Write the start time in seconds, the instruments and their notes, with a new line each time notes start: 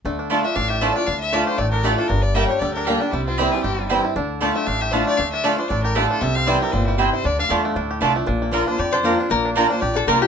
0.05 upright bass D2, steel-string acoustic guitar D3, five-string banjo A3
0.19 five-string banjo D4
0.30 steel-string acoustic guitar D3 A3 D4 F4, mandolin A3 F4 D5 A5, five-string banjo A3
0.44 five-string banjo D4, steel-string acoustic guitar D4 F4, fiddle E5
0.55 upright bass A1, steel-string acoustic guitar A2, five-string banjo D4, fiddle F5
0.69 five-string banjo G4, fiddle E5
0.81 steel-string acoustic guitar D3 A3 D4 F4, mandolin A3 F4 D5 A5, five-string banjo A3, fiddle C5
0.94 five-string banjo D4, steel-string acoustic guitar D4 F4, fiddle D5
1.07 upright bass D2, steel-string acoustic guitar D3, five-string banjo D4, fiddle F5
1.20 fiddle E5
1.32 steel-string acoustic guitar D3 A3 D4 F4, mandolin A3 F4 D5 A5, five-string banjo A3, fiddle D5
1.47 five-string banjo G4, fiddle C5
1.58 upright bass A1, steel-string acoustic guitar A2, five-string banjo A3, fiddle D5
1.71 five-string banjo D4, fiddle A#4
1.83 steel-string acoustic guitar D3 A3 D4 F4, mandolin A3 F4 D5 A5, five-string banjo A3, fiddle G4
1.98 five-string banjo D4, steel-string acoustic guitar D4 F4, fiddle A4
2.08 upright bass G1, steel-string acoustic guitar G2, five-string banjo D4, fiddle A#4
2.22 fiddle D5
2.34 steel-string acoustic guitar G3 A#3 D4 G4, five-string banjo G3, mandolin A#3 G4 D5 G5, fiddle E5
2.48 steel-string acoustic guitar G4, five-string banjo G4, fiddle C#5
2.52 steel-string acoustic guitar D4
2.59 upright bass D2, steel-string acoustic guitar D3, five-string banjo G3, fiddle D5
2.74 five-string banjo D4, fiddle A#4
2.85 steel-string acoustic guitar G3 A#3 D4 G4, five-string banjo G3, mandolin A#3 G4 D5 G5, fiddle G4
3.01 fiddle D4, five-string banjo D4, steel-string acoustic guitar D4 G4
3.11 upright bass C2, steel-string acoustic guitar C3, five-string banjo G3, fiddle E4
3.26 five-string banjo C4, fiddle F4
3.38 steel-string acoustic guitar E3 G3 C4 E4, mandolin C4 E4 C5 G5, five-string banjo E4, fiddle G4
3.51 five-string banjo G3, steel-string acoustic guitar C4 E4, fiddle G#4
3.63 upright bass G1, steel-string acoustic guitar G2, five-string banjo C4, fiddle G4
3.79 five-string banjo G3
3.89 steel-string acoustic guitar E3 G3 C4 E4, mandolin C4 E4 C5 G5, five-string banjo C4
4.03 steel-string acoustic guitar C4 E4, five-string banjo E4
4.16 upright bass D2, steel-string acoustic guitar D3, five-string banjo D4
4.41 steel-string acoustic guitar D3 A3 D4 F4, mandolin A3 F4 D5 A5, five-string banjo G4
4.55 five-string banjo A3, fiddle E5
4.66 upright bass A1, steel-string acoustic guitar A2, five-string banjo D4, fiddle F5
4.81 five-string banjo G4, fiddle E5
4.92 steel-string acoustic guitar D3 A3 D4 F4, mandolin A3 F4 D5 A5, five-string banjo D4, fiddle C5
5.06 five-string banjo A3, fiddle D5
5.17 upright bass D2, steel-string acoustic guitar D3, five-string banjo A3, fiddle F5
5.33 five-string banjo D4, fiddle E5
5.44 steel-string acoustic guitar D3 A3 D4 F4, mandolin A3 F4 D5 A5, five-string banjo A3, fiddle D5
5.58 five-string banjo D4, steel-string acoustic guitar D4 F4, fiddle C5
5.68 upright bass A1, steel-string acoustic guitar A2, five-string banjo D4, fiddle D5
5.83 five-string banjo G4, fiddle A#4
5.95 steel-string acoustic guitar D3 A3 D4 F4, mandolin A3 F4 D5 A5, five-string banjo A3, fiddle G4
6.10 five-string banjo D4, fiddle A4
6.21 upright bass C2, steel-string acoustic guitar C3, five-string banjo G3, fiddle E5
6.35 five-string banjo C4, fiddle F5
6.46 steel-string acoustic guitar E3 G3 C4 E4, mandolin C4 E4 C5 G5, five-string banjo E4, fiddle D5
6.61 five-string banjo G3, steel-string acoustic guitar C4 E4, fiddle A#4
6.72 upright bass G1, steel-string acoustic guitar A#2, five-string banjo C4, fiddle C5
6.86 five-string banjo G3, fiddle E4
6.98 steel-string acoustic guitar C3, mandolin C4 E4 C5 G5, five-string banjo C4, fiddle G4
7.13 five-string banjo E4, fiddle C5
7.24 upright bass D2, steel-string acoustic guitar D3, five-string banjo D4, fiddle D5
7.39 five-string banjo D4, fiddle F5
7.49 upright bass E2, steel-string acoustic guitar D3 A3 D4 F4, mandolin A3 F4 D5 A5, five-string banjo G4
7.65 five-string banjo A3
7.76 upright bass D2, steel-string acoustic guitar A2, five-string banjo D4
7.91 five-string banjo G4
8.01 upright bass C2, steel-string acoustic guitar D3 A3 D4 F4, mandolin A3 F4 D5 A5, five-string banjo D4
8.14 five-string banjo A3, steel-string acoustic guitar D4 F4
8.26 upright bass A#1, steel-string acoustic guitar A#2, five-string banjo D4
8.42 five-string banjo A#3
8.51 five-string banjo D3, steel-string acoustic guitar F3 A#3 D4 F4, mandolin A#3 F4 D5 A#5, fiddle A#4
8.66 five-string banjo D4, steel-string acoustic guitar D4 F4, fiddle C5
8.78 steel-string acoustic guitar F2, upright bass F2, five-string banjo G4, fiddle D5
8.93 five-string banjo D4, resonator guitar played with a steel bar C5
9.03 steel-string acoustic guitar F3 A#3 D4 F4, mandolin A#3 F4 D5 A#5, five-string banjo G4
9.18 five-string banjo D4, steel-string acoustic guitar D4 F4
9.30 upright bass A#1, steel-string acoustic guitar A#2, five-string banjo A#3, resonator guitar played with a steel bar A#4
9.45 five-string banjo D4
9.55 steel-string acoustic guitar F3 A#3 D4 F4, mandolin A#3 F4 D5 A#5, five-string banjo G4, fiddle A#4
9.69 five-string banjo D4, steel-string acoustic guitar D4 F4, fiddle C5
9.81 upright bass A#1, steel-string acoustic guitar F2, five-string banjo G4, fiddle D5
9.96 five-string banjo D4, resonator guitar played with a steel bar A4
10.07 upright bass C2, steel-string acoustic guitar F3 A#3 D4 F4, mandolin A#3 F4 D5 A#5, five-string banjo G4, resonator guitar played with a steel bar A#4
10.21 five-string banjo D4, steel-string acoustic guitar D4 F4, resonator guitar played with a steel bar G4